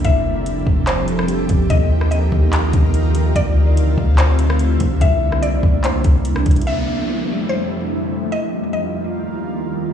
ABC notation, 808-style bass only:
X:1
M:4/4
L:1/8
Q:1/4=145
K:F
V:1 name="808-style bass" clef=bass
F,,,3 F,,,4 F,,, | _E,,3 E,,2 E,,3 | D,,3 D,,4 D,, | C,,3 C,,2 C,,2 C,, |
z8 | z8 |]